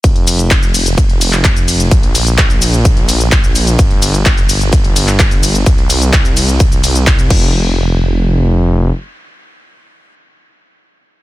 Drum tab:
CC |----------------|----------------|----------------|--------------x-|
RD |x-x-x-x-x-x-x-x-|x-x-x-x-x-x-x-x-|x-x-x-x-x-x-x-x-|x-x-x-x-x-x-x---|
HH |xxoxxxoxxxoxxxox|xxoxxxoxxxo-xxox|xxoxxxoxxxoxxxox|xxoxxxoxxxoxxx--|
SH |x-xxxxxxx-xxxxxx|x-xxxxxxx-xxxxxx|x-xxxxxxx-xxxxxx|x-xxxxxxxxxxxx--|
CP |----x------xx---|----x-------x---|----x------xx---|----x-------x---|
BD |o---o---o---o---|o---o---o---o---|o---o---o---o---|o---o---o---o-o-|

CC |----------------|----------------|
RD |----------------|----------------|
HH |----------------|----------------|
SH |----------------|----------------|
CP |----------------|----------------|
BD |----------------|----------------|